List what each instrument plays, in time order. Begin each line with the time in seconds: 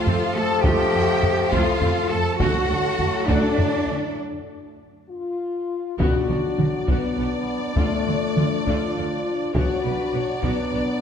Already playing: trombone section C3 F3, french horn section A3 A4, cello section F4, violin section A4 F5
0.06 double bass section F2, viola section A3 C4, taiko low
0.35 double bass section F2, viola section A3, cello section A4, violin section A5
0.64 double bass section F2, viola section A3 F4, cello section G4, violin section G5, taiko
0.93 double bass section F2, viola section A3 C4
1.23 taiko low
1.51 double bass section F2, viola section A3 F4, cello section F4, violin section F5, taiko
1.81 double bass section F2, viola section A3 C4, taiko low
2.10 double bass section F2, viola section A3, cello section A4, violin section A5
2.38 double bass section D2, trombone section A2 F#3, viola section A3 F#4, french horn section A3 A4, cello section F#4, violin section A4 F#5, taiko
2.68 double bass section D2, viola section A3 D4
2.99 taiko low
3.27 double bass section D2, viola section A3 F#4, cello section D4, violin section D5, taiko
3.57 double bass section D2, viola section A3 D4, taiko low
3.87 double bass section D2, viola section A3
5.09 french horn section F4
5.99 double bass section B1, timpani B2, cello section B2, trombone section F#3 D4, viola section B3 F#4, french horn section F#4, violin section D5, taiko
6.29 double bass section B1, cello section B2, viola section B3 F#4, taiko mid
6.58 double bass section B1, cello section B2, viola section B3 F#4, taiko mid
6.88 double bass section B1, cello section B2, viola section B3 F#4, french horn section B3, violin section D5, taiko
7.18 double bass section B1, cello section B2, viola section B3 F#4
7.75 double bass section D2, cello section D3, trombone section F3, french horn section A3, viola section A3 F4, taiko
8.07 double bass section D2, cello section D3, viola section A3 F4, taiko mid
8.36 double bass section D2, cello section D3, viola section A3 F4, taiko mid
8.67 double bass section D2, cello section D3, viola section A3 F4, french horn section F4, taiko
8.96 double bass section D2, cello section D3, viola section A3 F4
9.54 double bass section B1, cello section B2, trombone section F#3 D4, viola section B3 F#4, french horn section F#4, violin section C#5 D5, taiko
9.84 double bass section B1, cello section B2, viola section B3 F#4, violin section B4
10.13 double bass section B1, cello section B2, viola section B3 F#4, violin section C#5
10.42 double bass section B1, cello section B2, french horn section B3, viola section B3 F#4, violin section D5, taiko
10.71 double bass section B1, cello section B2, viola section B3 F#4